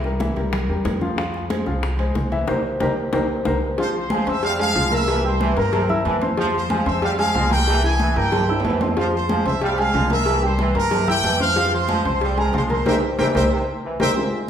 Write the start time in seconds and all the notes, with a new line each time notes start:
Already playing: C2
0.04 G3 G4 A#4, high bongo, high conga
0.20 E3 E4 E5, high bongo, high conga, high timbale
0.36 C2 G3 G4 A#4, high bongo, high conga, high timbale
0.53 high bongo, high conga, low conga, high timbale
0.69 E2 G3 G4 A#4, high conga
0.85 F2, high bongo, low bongo, high conga, high timbale
1.01 F3 F4 F5, high bongo, high conga
1.17 F3 F4 F5, high bongo, high conga, high timbale
1.34 high bongo, high conga
1.50 G#3 G#4 C5, high bongo, high conga, high timbale
1.66 C2 F3 F4 F5, high bongo, high conga
1.83 high bongo, high conga, high timbale
1.99 G#3 G#4 C5, high conga, high timbale
2.15 C2, high bongo, low bongo, high conga
2.32 E3 E4 E5, high bongo, high conga, high timbale
2.48 C2 G4 A#4 C5, low bongo, high conga, high timbale
2.80 C2 G4 A#4 C5, low bongo, high conga, high timbale
3.13 C2 G4 A#4 C5, low bongo, high conga, high timbale
3.45 C2 G4 A#4 C5, low bongo, high conga, high timbale
3.78 F3 F4 C5 F5 C6, cowbell, high conga
3.94 C5 C6, high conga
4.10 F3 G#3 G#4 G#5, cowbell, high conga, low agogo
4.27 F2 C4 C5 E5 C6 E6, cowbell, high conga
4.43 G3 F5, cowbell, high conga, low agogo
4.59 G#3 G#4 F5 G#5, cowbell, high conga, low agogo
4.75 C2 F3 G#3 F4 F5, cowbell, high conga
4.91 A#3 A#4 E5 A#5 E6, cowbell, high conga, low agogo
5.08 E3, cowbell, low agogo
5.24 G3 G4 C5 G5 C6, high conga
5.41 E3, cowbell, high conga, low agogo
5.57 G2 A#3 A#4 A#5, cowbell, low agogo
5.73 C3, cowbell, high conga, low conga, low agogo
5.89 E4 E5 E6, high conga, low conga
6.05 F2 E3, cowbell, high conga, low timbale, low agogo
6.22 C4 C5 C6, cowbell, high conga
6.37 F3 F4 C5 F5 C6, cowbell, high conga
6.54 C5 C6, high conga
6.70 F3 G#3 G#4 G#5, cowbell, high conga, low agogo
6.86 F2 C4 C5 E5 C6 E6, cowbell, high conga
7.02 G3 F5, cowbell, high conga, low agogo
7.19 G#3 G#4 F5 G#5, cowbell, high conga, low agogo
7.35 C2 F3 G#3 F4 F5, cowbell, high conga, low timbale
7.51 A#3 G4 A#4 G5 A#5, cowbell, high conga, low agogo
7.67 E3, cowbell, high conga, low agogo
7.83 E3 E4 G#4 E5 G#5, high conga
8.00 E3, cowbell, high conga, low agogo
8.16 G2 A#3 G4 A#4 G5 A#5, cowbell, high conga, low agogo
8.32 C3, cowbell, high conga, low conga, low agogo
8.48 E4 E5 E6, high conga, high timbale
8.60 low timbale
8.64 F2 E3, cowbell, high conga, low agogo
8.70 low timbale
8.81 C4 C5 C6, cowbell, high conga, low timbale
8.97 F3 F4 C5 F5 C6, cowbell, high conga
9.13 C5 C6, high conga
9.29 F3 G#3 G#4 G#5, cowbell, high conga, low agogo
9.45 C2 C4 C5 E5 C6 E6, cowbell, high conga
9.61 G3 F5, cowbell, high conga, low agogo
9.78 G#3 G#4 F5 G#5, cowbell, high conga, low agogo
9.94 C2 F3 G#3 F4 F5, cowbell, high conga, low timbale
10.10 A#3 A#4 E5 A#5 E6, cowbell, high conga, low agogo
10.26 E3, cowbell, high conga, low agogo
10.43 G3 G4 C5 G5 C6, high conga
10.59 E3, cowbell, high conga, low agogo
10.75 G2 A#3 A#4 A#5, cowbell, high conga, low agogo
10.91 C3, cowbell, high conga, low conga, low agogo
11.08 E4 G4 E5 G5 E6, high conga, low conga
11.24 F2 E3, cowbell, high conga, low agogo
11.40 C4 C5 F5 C6, cowbell, high conga
11.56 F3 F4 F5, cowbell, high conga
11.72 C5 C6, high conga
11.89 F3 G#3 G#4 G#5, cowbell, high conga, low agogo
12.05 C2 C4 C5 C6, cowbell, high conga
12.21 G3 C5 C6, cowbell, high conga, low agogo
12.37 G#3 G#4 A#4 G#5 A#5, cowbell, high conga, low agogo
12.53 C2 F3 G#3 F4 C5 F5 C6, cowbell, high conga
12.70 A#3 A#4 C5 A#5 C6, cowbell, high conga, low agogo
12.86 C2 E3 G4 A#4 C5 E5 G5, cowbell, high conga, high timbale
13.19 C2 E3 G4 A#4 C5 E5 G5, cowbell, high conga, high timbale
13.35 C2 G4 A#4 C5 E5 G5, cowbell, high conga, high timbale
13.52 C3
13.84 E3
14.00 C2 G4 A#4 C5 E5 G5, cowbell, high conga, high timbale
14.16 G#3 C4 F4, high conga
14.32 high conga